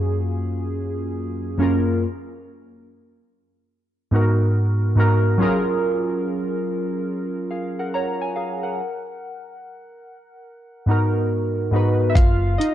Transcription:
0.00 1.58 F#2 medium
0.00 1.59 A#3 medium
0.00 1.60 C#4 medium
0.00 1.61 F4 medium
0.00 2.04 F#4 medium
0.00 2.03 G#4 loud
1.58 2.01 F#2 medium
1.58 2.01 A#3 medium
1.58 2.02 C#4 medium
1.58 2.02 F4 medium
1.62 2.03 A#4 medium
4.11 4.84 G#2 medium
4.11 4.85 B3 medium
4.11 4.85 D#4 medium
4.11 4.86 F#4 medium
4.16 4.86 A#4 medium
4.95 5.32 G#2 medium
4.95 5.33 B3 medium
4.95 5.33 D#4 medium
4.95 5.34 F#4 medium
5.00 5.34 A#4 loud
5.38 6.74 F#3 medium
5.38 6.75 C#4 medium
5.38 6.75 F4 medium
5.38 6.76 G#4 medium
5.43 6.77 A#4 loud
7.51 7.77 G#4 soft
7.51 7.77 F5 medium
7.79 7.93 A#4 soft
7.79 7.93 F#5 medium
7.94 8.20 C#5 medium
7.94 8.20 A#5 medium
8.21 8.35 G#5 medium
8.36 8.62 G#4 medium
8.36 8.62 F5 medium
8.63 9.03 A#4 soft
8.63 9.03 F#5 medium
10.86 11.60 G#2 medium
10.86 11.60 B3 medium
10.86 11.61 D#4 medium
10.86 11.61 F#4 medium
10.91 11.62 A#4 medium
11.71 12.08 G#2 medium
11.71 12.09 B3 medium
11.71 12.09 D#4 medium
11.71 12.10 F#4 medium
11.76 12.11 B4 medium
12.10 12.15 E5 medium
12.15 12.55 F#1 loud
12.15 12.56 F4 medium
12.15 12.59 F5 loud
12.15 kick loud
12.15 closed hi-hat medium
12.58 12.74 D#4 medium
12.58 12.74 D#5 medium
12.58 closed hi-hat medium

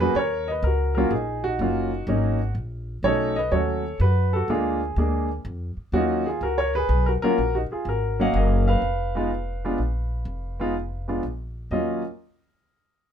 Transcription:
0.00 0.14 F2 medium
0.00 0.14 F#3 medium
0.00 0.14 A#3 medium
0.00 0.15 C#4 medium
0.00 0.15 F#4 medium
0.00 0.16 G#4 medium
0.00 0.16 B4 medium
0.15 0.62 D#2 medium
0.15 0.50 C#5 medium
0.19 0.48 A#4 medium
0.48 0.64 B4 medium
0.48 0.62 D#5 medium
0.63 1.10 C#2 medium
0.63 0.93 A#4 medium
0.67 0.96 F#4 medium
0.95 1.10 F#3 medium
0.95 1.11 A#3 medium
0.95 1.11 C#4 medium
0.95 1.11 F4 medium
0.95 1.12 F#4 medium
0.95 1.11 A#4 medium
1.11 1.58 A#1 medium
1.11 1.43 D#4 medium
1.11 1.42 G#4 medium
1.44 2.08 D#4 medium
1.44 2.52 F#4 loud
1.59 2.06 F#1 medium
1.59 1.90 F#3 medium
1.59 1.90 A#3 medium
1.59 1.90 C#4 medium
1.59 1.90 F4 medium
2.07 2.54 G#1 medium
2.07 2.38 F#3 medium
2.07 2.38 A#3 medium
2.07 2.38 C#4 medium
2.07 2.38 D#4 medium
2.55 3.02 A#1 medium
3.03 3.50 B1 medium
3.03 3.34 F#3 medium
3.03 3.34 A3 medium
3.03 3.34 C#4 medium
3.03 3.35 D#4 medium
3.03 3.36 A4 medium
3.03 3.38 C#5 medium
3.36 3.52 B4 medium
3.36 3.53 D#5 medium
3.51 3.99 D#2 medium
3.51 3.82 F#3 medium
3.51 3.82 A3 soft
3.51 3.82 C#4 medium
3.51 3.83 F#4 medium
3.51 3.98 A4 medium
3.51 3.97 C#5 medium
4.00 4.47 F#2 medium
4.00 4.33 F#4 medium
4.00 4.35 B4 medium
4.33 4.49 F#4 medium
4.33 4.49 A4 medium
4.48 4.95 D2 medium
4.48 4.79 G#3 medium
4.48 4.79 A#3 medium
4.48 4.79 D4 medium
4.48 4.79 F4 medium
4.48 4.97 G#4 medium
4.96 5.44 D2 medium
4.96 5.27 G#3 medium
4.96 5.27 A#3 medium
4.96 5.27 D4 medium
4.96 5.28 G#4 medium
5.45 5.76 F2 medium
5.77 muted upright bass stroke soft
5.92 6.40 D#2 medium
5.92 6.23 F#3 medium
5.92 6.23 A#3 medium
5.92 6.23 C#4 medium
5.92 6.25 D#4 medium
5.92 6.24 F4 medium
5.92 6.27 F#4 medium
6.26 6.42 F4 medium
6.26 6.42 G#4 medium
6.41 6.88 C#2 medium
6.41 6.58 F#4 medium
6.41 6.59 A#4 medium
6.58 6.74 A#4 medium
6.58 6.73 C#5 medium
6.75 7.05 G#4 medium
6.75 7.08 B4 medium
6.89 7.20 B1 medium
7.06 7.14 F#4 medium
7.06 7.11 A#4 medium
7.22 7.37 F#3 medium
7.22 7.37 A#3 medium
7.22 7.37 C#4 medium
7.22 7.37 F4 medium
7.22 7.53 F#4 medium
7.22 7.55 A#4 medium
7.22 muted upright bass stroke soft
7.38 7.68 A#1 medium
7.55 7.61 D#4 medium
7.55 7.60 F#4 medium
7.71 7.86 F4 soft
7.71 7.87 G#4 medium
7.71 muted upright bass stroke soft
7.85 8.32 G#1 medium
7.85 8.36 A#4 medium
7.89 8.65 F#4 medium
8.19 8.80 F#3 medium
8.19 8.80 A#3 medium
8.19 8.80 C#4 medium
8.19 8.35 D#5 medium
8.19 8.66 F5 medium
8.19 8.36 F#5 medium
8.34 8.81 F#1 medium
8.34 8.66 A#4 medium
8.34 8.69 D#5 medium
8.68 11.20 B4 medium
8.68 11.19 F5 medium
8.82 9.74 F1 medium
9.15 9.29 G#3 medium
9.15 9.29 B3 medium
9.15 9.30 D#4 medium
9.15 9.30 F4 medium
9.64 9.78 G#3 medium
9.64 9.78 B3 medium
9.64 9.78 D4 medium
9.64 9.78 F4 medium
9.78 10.23 A#1 medium
10.25 11.18 F1 medium
10.60 10.73 G#3 medium
10.60 10.73 B3 medium
10.60 10.74 D#4 medium
10.60 10.74 F4 medium
11.08 11.21 G#3 medium
11.08 11.22 B3 medium
11.08 11.22 D4 soft
11.08 11.22 F4 medium
11.23 11.68 A#1 medium
11.71 12.01 D#2 medium
11.71 12.01 F#3 medium
11.71 12.01 A#3 medium
11.71 12.01 C#4 medium
11.71 12.01 F4 medium
11.71 12.02 D#5 medium

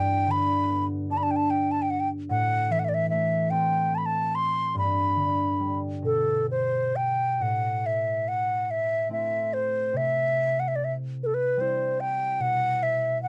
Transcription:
0.00 2.34 G2 medium
0.00 0.75 C4 soft
0.00 1.21 E4 soft
0.00 0.32 G5 medium
0.26 2.34 D3 soft
0.31 0.85 B5 medium
0.69 3.58 B3 soft
1.10 3.90 D4 medium
1.10 1.19 A5 medium
1.17 1.25 B5 medium
1.23 1.32 A5 medium
1.31 1.38 G5 medium
1.36 1.52 A5 medium
1.50 1.73 G5 medium
1.71 1.84 A5 medium
1.82 1.92 G5 medium
1.91 2.02 F#5 medium
2.00 2.09 G5 medium
2.29 4.80 A2 medium
2.29 2.73 F#5 medium
2.70 4.80 E3 soft
2.70 2.81 E5 medium
2.79 2.86 F#5 soft
2.84 2.90 E5 medium
2.89 2.96 D5 soft
2.94 3.09 E5 medium
3.10 6.44 A3 medium
3.10 3.52 E5 medium
3.51 6.08 C4 medium
3.51 3.96 G5 medium
3.95 3.99 A5 medium
3.95 4.07 B5 medium
4.06 4.37 A5 medium
4.35 4.76 C6 medium
4.75 6.08 G2 soft
4.75 5.79 B5 medium
5.16 6.08 D3 soft
5.60 7.45 G3 soft
6.02 7.45 B2 soft
6.02 6.46 A4 medium
6.51 6.97 C5 medium
6.96 7.43 G5 medium
7.40 10.00 A2 soft
7.40 7.88 F#5 medium
7.86 8.30 E5 medium
8.28 8.72 F#5 medium
8.71 9.11 E5 medium
9.09 12.42 A3 soft
9.09 11.58 C4 soft
9.09 11.61 E4 soft
9.09 9.55 E5 medium
9.54 9.98 C5 medium
9.93 12.45 C3 soft
9.93 10.61 E5 medium
10.60 10.69 F#5 medium
10.68 10.77 E5 medium
10.76 10.86 D5 medium
10.84 10.93 E5 medium
11.23 11.36 A4 medium
11.23 11.26 B4 medium
11.34 11.62 B4 medium
11.57 12.45 G3 soft
11.57 12.45 C4 soft
11.57 12.02 C5 medium
11.61 13.28 E4 soft
12.00 12.42 G5 medium
12.39 13.28 B2 soft
12.39 12.84 F#5 medium
12.83 13.21 E5 medium
13.23 13.28 F#5 medium

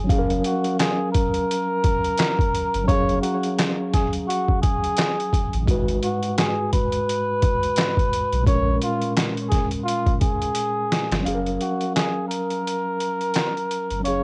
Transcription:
0.04 2.82 F#3 medium
0.04 2.83 C#4 medium
0.09 0.41 F#1 loud
0.09 0.18 G#4 medium
0.09 2.84 F5 medium
0.09 kick loud
0.09 closed hi-hat medium
0.18 2.89 A#4 medium
0.30 closed hi-hat soft
0.44 0.76 F#4 medium
0.44 closed hi-hat medium
0.64 closed hi-hat soft
0.79 1.11 G#4 medium
0.79 snare loud
0.79 clap medium
0.79 closed hi-hat medium
1.12 2.83 A#4 medium
1.12 kick medium
1.12 closed hi-hat medium
1.34 closed hi-hat medium
1.51 closed hi-hat medium
1.84 kick medium
1.84 closed hi-hat medium
2.05 closed hi-hat soft
2.18 snare loud
2.18 clap medium
2.18 closed hi-hat loud
2.39 kick loud
2.39 closed hi-hat soft
2.55 closed hi-hat medium
2.74 2.88 G1 medium
2.74 closed hi-hat soft
2.84 5.61 F#3 medium
2.84 5.62 C#4 medium
2.88 3.20 F#1 loud
2.88 5.65 G#4 medium
2.88 3.20 C#5 loud
2.88 5.64 F5 medium
2.88 kick loud
2.88 closed hi-hat medium
3.09 closed hi-hat soft
3.22 3.54 F#4 medium
3.22 closed hi-hat medium
3.43 closed hi-hat soft
3.59 snare loud
3.59 clap medium
3.59 closed hi-hat loud
3.94 4.12 G#4 medium
3.94 kick medium
3.94 snare soft
3.94 closed hi-hat medium
4.13 closed hi-hat medium
4.28 4.59 F#4 loud
4.28 closed hi-hat medium
4.48 kick medium
4.62 5.63 G#4 medium
4.62 kick medium
4.62 closed hi-hat medium
4.84 closed hi-hat soft
4.97 snare loud
4.97 clap loud
4.97 closed hi-hat loud
5.20 closed hi-hat soft
5.33 kick medium
5.33 closed hi-hat medium
5.53 5.67 A1 medium
5.53 closed hi-hat soft
5.63 8.40 G#2 medium
5.63 8.42 G#3 medium
5.67 5.99 G#1 loud
5.67 8.43 F#4 medium
5.67 8.44 B4 medium
5.67 kick loud
5.67 closed hi-hat medium
5.88 closed hi-hat soft
6.03 6.34 F#4 medium
6.03 closed hi-hat medium
6.23 closed hi-hat soft
6.38 6.69 G#4 medium
6.38 snare loud
6.38 clap medium
6.38 closed hi-hat loud
6.73 8.43 B4 medium
6.73 kick medium
6.73 closed hi-hat medium
6.92 closed hi-hat medium
7.09 closed hi-hat medium
7.42 kick medium
7.42 closed hi-hat medium
7.63 closed hi-hat soft
7.76 snare loud
7.76 clap loud
7.76 closed hi-hat loud
7.97 kick loud
7.97 closed hi-hat soft
8.13 closed hi-hat medium
8.33 8.46 B1 medium
8.33 closed hi-hat soft
8.41 11.19 A#2 medium
8.41 11.20 G#3 medium
8.46 8.78 A#1 loud
8.46 11.21 C#4 medium
8.46 11.23 A#4 medium
8.46 8.78 C#5 loud
8.46 kick loud
8.46 closed hi-hat medium
8.82 9.14 F4 medium
8.82 closed hi-hat medium
9.02 closed hi-hat soft
9.17 snare loud
9.17 clap loud
9.17 closed hi-hat medium
9.37 closed hi-hat soft
9.49 9.68 G#4 medium
9.49 kick medium
9.49 snare soft
9.49 closed hi-hat medium
9.71 closed hi-hat medium
9.84 10.16 F4 medium
9.88 closed hi-hat medium
10.06 kick medium
10.06 closed hi-hat soft
10.21 11.22 G#4 medium
10.21 kick medium
10.21 closed hi-hat medium
10.42 closed hi-hat soft
10.55 closed hi-hat loud
10.92 snare medium
10.92 closed hi-hat medium
11.12 11.25 G1 loud
11.12 snare medium
11.12 closed hi-hat soft
11.20 13.98 F#3 medium
11.20 13.99 C#4 medium
11.25 11.58 F#1 loud
11.25 11.34 G#4 medium
11.25 14.01 F5 medium
11.25 closed hi-hat medium
11.35 14.05 A#4 medium
11.46 closed hi-hat soft
11.61 11.93 F#4 medium
11.61 closed hi-hat medium
11.81 closed hi-hat soft
11.96 12.27 G#4 medium
11.96 snare loud
11.96 clap loud
11.96 closed hi-hat loud
12.28 14.00 A#4 loud
12.28 closed hi-hat medium
12.50 closed hi-hat medium
12.67 closed hi-hat medium
13.00 closed hi-hat medium
13.21 closed hi-hat soft
13.34 snare loud
13.34 clap loud
13.34 closed hi-hat loud
13.57 closed hi-hat soft
13.71 closed hi-hat medium
13.91 14.04 G1 medium
13.91 closed hi-hat soft
14.00 14.23 F#3 medium
14.00 14.23 C#4 medium
14.04 14.23 F#1 loud
14.04 14.23 G#4 medium
14.04 14.23 C#5 loud
14.04 14.23 F5 medium
14.04 closed hi-hat medium

